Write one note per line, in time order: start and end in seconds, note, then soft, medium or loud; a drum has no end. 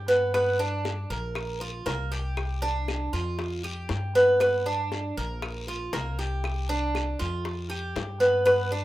0.00 1.04 G2 medium
0.08 0.33 B3 medium
0.08 high bongo soft
0.08 short guiro medium
0.34 0.59 B3 medium
0.34 high bongo medium
0.34 long guiro medium
0.34 claves medium
0.59 1.09 D4 medium
0.59 high bongo soft
0.85 high bongo medium
0.85 short guiro medium
1.10 1.82 A#1 medium
1.10 1.60 A#4 medium
1.10 short guiro medium
1.35 high bongo medium
1.35 long guiro medium
1.35 claves medium
1.61 1.86 F4 medium
1.61 high bongo soft
1.86 3.07 C2 medium
1.86 2.11 A#3 medium
1.86 high bongo medium
1.86 low bongo medium
1.86 short guiro medium
2.12 2.61 G4 medium
2.12 high bongo soft
2.12 short guiro medium
2.37 high bongo medium
2.37 long guiro medium
2.37 claves medium
2.62 3.12 D4 medium
2.62 high bongo soft
2.88 high bongo medium
2.88 short guiro medium
2.88 claves medium
3.13 3.86 F2 medium
3.13 3.63 F4 medium
3.13 short guiro medium
3.39 high bongo medium
3.39 long guiro medium
3.64 4.13 G4 medium
3.64 high bongo soft
3.64 claves medium
3.89 5.10 G2 medium
3.89 high bongo medium
3.89 low bongo medium
3.89 short guiro medium
4.15 4.40 B3 medium
4.15 high bongo soft
4.15 short guiro medium
4.40 4.65 B3 medium
4.40 high bongo medium
4.40 long guiro medium
4.40 claves medium
4.66 5.15 D4 medium
4.66 high bongo soft
4.92 high bongo medium
4.92 short guiro medium
5.17 5.89 A#1 medium
5.17 5.66 A#4 medium
5.17 short guiro medium
5.42 high bongo medium
5.42 long guiro medium
5.42 claves medium
5.68 5.92 F4 medium
5.68 high bongo soft
5.93 7.14 C2 medium
5.93 6.18 A#3 medium
5.93 high bongo medium
5.93 low bongo medium
5.93 short guiro medium
6.18 6.68 G4 medium
6.18 high bongo soft
6.18 short guiro medium
6.44 high bongo medium
6.44 long guiro medium
6.44 claves medium
6.69 7.18 D4 medium
6.69 high bongo soft
6.95 high bongo medium
6.95 short guiro medium
6.95 claves medium
7.19 7.92 F2 medium
7.19 7.69 F4 medium
7.19 short guiro medium
7.45 high bongo medium
7.45 long guiro medium
7.70 8.19 G4 medium
7.70 high bongo soft
7.70 claves medium
7.96 8.85 G2 medium
7.96 high bongo medium
7.96 low bongo medium
7.96 short guiro medium
8.20 8.44 B3 medium
8.20 high bongo soft
8.20 short guiro medium
8.46 8.70 B3 medium
8.46 high bongo medium
8.46 long guiro medium
8.46 claves medium
8.72 8.85 D4 medium
8.72 high bongo soft